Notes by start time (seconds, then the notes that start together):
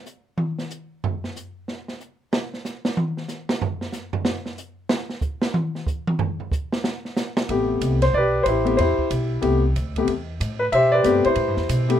0.06 hi-hat pedal
0.38 high tom
0.59 snare
0.70 hi-hat pedal
1.04 floor tom
1.24 snare
1.36 hi-hat pedal
1.68 snare
1.88 snare
2.00 hi-hat pedal
2.33 snare
2.54 snare
2.65 snare, hi-hat pedal
2.85 snare
2.97 high tom
3.17 snare
3.28 snare, hi-hat pedal
3.49 snare
3.62 floor tom
3.81 snare
3.92 snare, hi-hat pedal
4.13 floor tom
4.25 snare
4.46 snare
4.58 hi-hat pedal
4.89 snare
5.10 snare
5.21 kick, hi-hat pedal
5.42 snare
5.54 high tom
5.75 snare
5.87 kick, hi-hat pedal
6.07 high tom
6.19 floor tom
6.40 floor tom
6.52 kick, hi-hat pedal
6.72 snare
6.84 snare
7.05 snare
7.17 snare, hi-hat pedal
7.37 snare
7.49 A1 C3 A3 B3 G4, kick, ride
7.81 C2, kick, hi-hat pedal, ride
8.02 C5, snare, ride
8.13 B1 B4 D5, kick
8.17 G4
8.42 A1 B4 C5, kick, hi-hat pedal, ride
8.48 E4 G4
8.64 C3 A3 B3 G4, ride
8.77 E2 E4 G4 C5, kick, ride
8.99 muted upright bass stroke, kick
9.11 B1, kick, hi-hat pedal, ride
9.41 C2 C3 A3 B3 G4, kick, ride
9.75 D2, kick, hi-hat pedal, ride
9.96 C3 A3 B3 G4, kick, ride
10.08 E2, kick, ride
10.40 A2, kick, hi-hat pedal, ride
10.59 B4
10.72 B2 G4 C5 E5, kick, ride
10.92 G4 B4 D5
11.03 G2 C3 A3 B3 G4, kick, hi-hat pedal, ride
11.24 E4 G4 C5, muted upright bass stroke, ride
11.35 A2, kick, ride
11.48 G2
11.57 E2, snare
11.69 B2, kick, hi-hat pedal, ride
11.88 C3 A3 B3 G4, ride